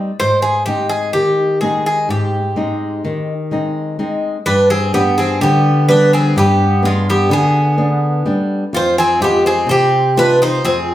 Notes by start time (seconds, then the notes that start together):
Already playing: G3 C4 D#4
0.20 G#2 C5
0.42 G#4
0.66 G#3 C4 D#4 G4
0.89 G#4
1.13 D#3 G4
1.61 G#3 C4 D#4 G#4
1.86 G#4
2.09 G#2 G4
2.56 G#3 C4 D#4
3.05 D#3
3.51 G#3 C4 D#4
3.99 G#3 C4 D#4
4.46 G2 D4 B4
4.70 C4 G#4
4.93 G3 B3 D4 G4
5.18 C4 G#4
5.41 D3 B3 G4
5.88 G3 B3 D4 B4
6.13 C4 G#4
6.36 G2 B3 G4
6.82 G#3 B3 D4 F4
7.10 B3 G4
7.29 D3 B3 G#4
7.78 B3 D4
8.26 G3 B3 D4
8.73 F2 F4 C5
8.98 C4 G#4
9.20 G#3 B3 C4 F4 G4
9.46 C4 G#4
9.67 C3 C4
9.71 G4
10.16 G#3 C4 D4 F4 B4
10.42 D#4 C5
10.64 F2 C4 G#4